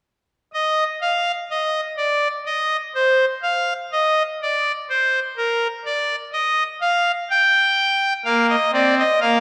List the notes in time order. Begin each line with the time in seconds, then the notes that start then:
0.53 D#5
1.01 F5
1.50 D#5
1.97 D5
2.45 D#5
2.95 C5
3.43 F5
3.92 D#5
4.42 D5
4.90 C5
5.37 A#4
5.85 D5
6.32 D#5
6.81 F5
7.30 G5
8.25 A#3 F5
8.49 D#5
8.73 C4 D5
8.98 D#5
9.21 A#3 F5